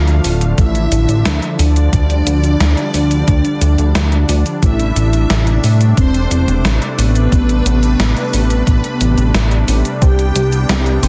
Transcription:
Already playing: D2 D3 F3 A3 D4 F4 F5
0.07 closed hi-hat, cabasa
0.24 D1, open hi-hat, cabasa
0.41 closed hi-hat, cabasa
0.58 A1 E4 E5, kick, closed hi-hat, cabasa
0.75 closed hi-hat, cabasa
0.92 A1, closed hi-hat, cabasa
1.09 A1, closed hi-hat, cabasa
1.25 D2, snare, closed hi-hat, cabasa
1.42 closed hi-hat, cabasa
1.59 D2 D4 D5, open hi-hat, cabasa
1.76 closed hi-hat, cabasa
1.93 D2 G3, kick, closed hi-hat, cabasa
2.10 closed hi-hat, cabasa
2.27 D2, closed hi-hat, cabasa
2.44 closed hi-hat, cabasa
2.60 D2, snare, closed hi-hat, cabasa
2.77 closed hi-hat, cabasa
2.94 D2, open hi-hat, cabasa
3.11 closed hi-hat, cabasa
3.28 D2, kick, closed hi-hat, cabasa
3.45 closed hi-hat, cabasa
3.61 D2, closed hi-hat, cabasa
3.78 D2, closed hi-hat, cabasa
3.95 D2, snare, closed hi-hat, cabasa
4.12 closed hi-hat, cabasa
4.29 D2, open hi-hat, cabasa
4.46 closed hi-hat, cabasa
4.62 A1 C3 G3 A3 E4 E5, kick, closed hi-hat, cabasa
4.79 closed hi-hat, cabasa
4.96 A1, closed hi-hat, cabasa
5.13 closed hi-hat, cabasa
5.30 A1, snare, closed hi-hat, cabasa
5.47 closed hi-hat, cabasa
5.64 A2, open hi-hat, cabasa
5.81 closed hi-hat, cabasa
5.97 E1 C4 C5, kick, closed hi-hat, cabasa
6.14 closed hi-hat, cabasa
6.31 E1, closed hi-hat, cabasa
6.48 E1, closed hi-hat, cabasa
6.65 A1, snare, closed hi-hat, cabasa
6.82 closed hi-hat, cabasa
6.98 A1 B3 B4, open hi-hat, cabasa
7.15 closed hi-hat, cabasa
7.32 A1, kick, closed hi-hat, cabasa
7.49 closed hi-hat, cabasa
7.66 A1, closed hi-hat, cabasa
7.83 closed hi-hat, cabasa
8.00 A1, snare, closed hi-hat, cabasa
8.17 closed hi-hat, cabasa
8.33 A1, open hi-hat, cabasa
8.50 closed hi-hat, cabasa
8.67 A1, kick, closed hi-hat, cabasa
8.84 closed hi-hat, cabasa
9.01 A1, closed hi-hat, cabasa
9.18 A1, closed hi-hat, cabasa
9.34 A1, snare, closed hi-hat, cabasa
9.51 closed hi-hat, cabasa
9.68 A1, open hi-hat, cabasa
9.85 closed hi-hat, cabasa
10.02 C2 B3 C4 G4 G5, kick, closed hi-hat, cabasa
10.19 closed hi-hat, cabasa
10.36 C2 G3, closed hi-hat, cabasa
10.52 closed hi-hat, cabasa
10.69 C2 B3, snare, closed hi-hat, cabasa
10.86 closed hi-hat, cabasa
11.03 G1 C4, open hi-hat, cabasa

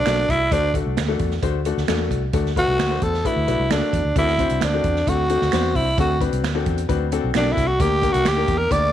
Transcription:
Already playing: D4
0.06 B1 A3 D4 F#4 A4, finger snap, snare, closed hi-hat
0.29 C2 E4, kick, closed hi-hat
0.52 D2 A3 D4 F#4 C5, kick, closed hi-hat
0.74 A3 D4 F#4 A4, kick, closed hi-hat
0.86 C2
0.97 D2, finger snap, snare, closed hi-hat
1.08 A3 D4 F#4 A4
1.19 E2, kick, closed hi-hat
1.31 snare
1.43 D2 A3 D4 F#4 C5, kick, closed hi-hat
1.65 A3 D4 F#4 A4, closed hi-hat
1.77 D2, snare
1.88 E2 A3 D4 F#4 A4, finger snap, snare, closed hi-hat
2.11 C2, kick, closed hi-hat
2.33 D2 A3 D4 F#4 A4, kick, closed hi-hat
2.46 snare
2.56 A3 D4 F#4 B4, kick, closed hi-hat
2.68 C2
2.79 D2, finger snap, snare, closed hi-hat
2.91 A3 D4 F#4 C5
3.02 E2 A4, kick, closed hi-hat
3.14 snare
3.25 A3 D4 E4 F#4 B4, kick, closed hi-hat
3.36 D2
3.48 B1 A3 D4 F#4 B4, closed hi-hat
3.59 C2
3.70 D2 A3 D4 F#4 A4, finger snap, snare, closed hi-hat
3.93 E2, kick, closed hi-hat
4.05 D2
4.16 D2 C4 D4 E4 F#4 A4, kick, closed hi-hat
4.27 snare
4.38 C4 D4 F#4 C5, kick, closed hi-hat
4.49 C2, closed hi-hat
4.61 D2 D4, finger snap, snare, closed hi-hat
4.73 C4 D4 F#4 A4
4.84 E2, kick, closed hi-hat
4.96 snare
5.07 D2 C4 D4 F#4 A4, kick, closed hi-hat
5.29 C4 D4 F#4 A4, closed hi-hat
5.41 D2, snare
5.52 E2 C4 D4 F#4 C5, finger snap, snare, closed hi-hat
5.75 C2 E4, kick, open hi-hat
5.98 D2 C4 D4 F#4 A4, kick, closed hi-hat
6.21 C4 D4 F#4 B4, kick, closed hi-hat
6.33 C2, closed hi-hat
6.44 D2, finger snap, snare, closed hi-hat
6.55 C4 D4 F#4 A4
6.66 E2, kick, closed hi-hat
6.78 closed hi-hat
6.89 D2 C4 D4 F#4 B4, kick, closed hi-hat
7.12 C4 D4 F#4 A4, closed hi-hat
7.24 B1
7.34 B1 C4 D4 F#4 G4, finger snap, snare, closed hi-hat
7.41 A4
7.52 E4
7.57 C2, kick, closed hi-hat
7.67 F#4
7.80 D2 A#3 D4 G4 A#4, kick, closed hi-hat
8.02 A#3 D4 G4 A#4, kick, closed hi-hat
8.12 C2 F#4, closed hi-hat
8.25 D2 G4, finger snap, snare, closed hi-hat
8.37 A#3 D4 G4 A#4
8.48 E2, kick, closed hi-hat
8.58 A#4
8.71 D2 A#3 D4 G4 A#4 D5, kick, closed hi-hat

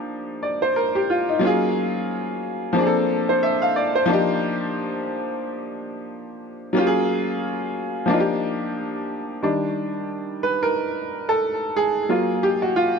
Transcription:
Already playing: F3 A#3 D4 D#4 G4
0.43 D5
0.62 C5
0.76 A#4
0.95 G4
1.10 F4
1.29 D#4
1.39 F#3 A#3 C#4
1.45 F4 G#4
2.73 F3 A#3 C4
2.78 D4 G#4
2.87 A4
3.29 C5
3.43 E5
3.62 F5
3.76 D5
3.95 C5
4.06 F3 A#3 D4
4.11 D#4 G4
6.73 F#3 A#3 C#4
6.78 F4 G4
6.87 G#4
8.06 F3 A#3
8.10 D4 D#4 F4
8.20 G4
9.42 D#3 G3 D4
10.43 B4
10.63 A#4
11.29 A4
11.77 G#4
12.09 F#3 A#3 F4
12.43 G4
12.62 F#4
12.76 F4

